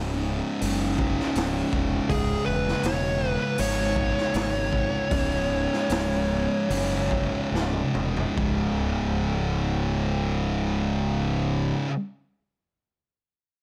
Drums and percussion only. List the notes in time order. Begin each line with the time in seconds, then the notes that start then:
0.61 open hi-hat
0.99 kick
1.20 snare
1.35 snare, open hi-hat
1.73 kick
2.10 kick, open hi-hat
2.68 snare
2.83 snare, open hi-hat
3.58 open hi-hat
3.96 kick
4.18 snare
4.34 snare, open hi-hat
4.73 kick
5.11 kick, open hi-hat
5.73 snare
5.89 snare, open hi-hat
6.70 open hi-hat
7.11 kick
7.55 snare
7.73 high tom
7.95 mid tom
8.17 floor tom
8.38 kick